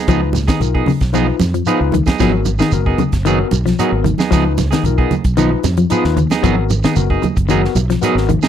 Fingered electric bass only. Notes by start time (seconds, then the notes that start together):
0.08 C#2
0.60 B1
1.01 B1
1.40 F2
1.81 C#2
2.21 G#1
2.72 F#1
3.13 F#1
3.53 B1
3.92 G#1
4.32 C#2
4.84 B1
5.25 B1
5.64 F2
6.05 D#2
6.44 G#1
6.96 F#1
7.37 F#1
7.75 B1
8.15 G#1